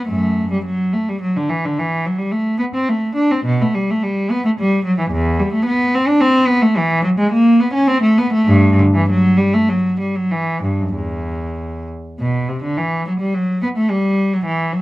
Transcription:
0.08 F#2 A3
0.51 G3
0.65 F#3
0.93 A3
1.09 G3
1.21 F#3
1.36 D3
1.49 E3
1.65 D3
1.79 E3
2.06 F#3
2.18 G3
2.31 A3
2.59 B3
2.74 C4
2.89 A3
3.15 D4
3.31 C4
3.45 B2
3.61 A3
3.74 G3
3.90 A3
4.03 G3
4.30 B3
4.45 A3
4.59 G3
4.85 F#3
4.99 E3
5.11 E2
5.39 G3
5.53 A3
5.66 B3
5.94 C4
6.07 D4
6.20 C4
6.47 B3
6.62 A3
6.77 E3
7.03 F#3
7.18 G#3
7.32 A#3
7.60 B3
7.73 C#4
7.87 C4
8.02 A3
8.18 B3
8.33 A3
8.47 G2
8.79 D3
8.94 E3
9.09 F#3
9.37 G3
9.54 A3
9.69 F#3
10.00 G3
10.15 F#3
10.31 E3
10.63 G2
10.81 F#2
10.95 E2
12.20 B2
12.48 C3
12.63 D3
12.77 E3
13.07 F#3
13.20 G3
13.34 F#3
13.63 B3
13.77 A3
13.90 G3
14.33 F#3
14.45 E3
14.72 F#3

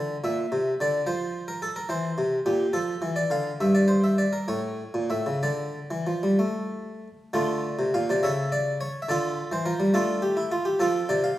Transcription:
Already playing: D3
0.24 A#2 E5
0.52 C3
0.81 D3 D5
1.06 F3 C5
1.48 A#4
1.62 A4
1.76 A#4
1.89 E3 C5
2.18 C3
2.46 A#2 G4
2.73 F3 A4
3.02 E3
3.16 D5
3.30 D3 F5
3.61 G2 E5
3.75 D5
3.88 C5
4.04 E5
4.18 D5
4.33 A#4
4.48 A2 C#5
4.94 A#2
5.10 A2 E5
5.26 C#3
5.43 D3 D5
5.91 E3
6.07 F3
6.23 G3
6.39 A3
7.33 D3 A3 D4 F4
7.79 C3
7.94 A#2 F5
8.10 C3 D5
8.23 C#3 A4 C#5 E5
8.52 D5
8.81 C#5
9.02 E5
9.09 D3 F4 A4 D5
9.52 E3 C5
9.66 F3 A#4
9.80 G3
9.94 A3 D4 F4 A4
10.22 G4
10.37 E4
10.52 F4
10.65 G4
10.80 F3 C4 F4 A4
11.09 C3 D5
11.24 F5

